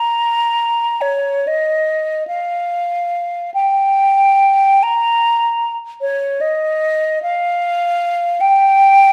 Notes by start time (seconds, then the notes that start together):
Already playing: A#5
1.01 C#5
1.47 D#5
2.27 F5
3.54 G5
4.83 A#5
6.01 C#5
6.40 D#5
7.22 F5
8.40 G5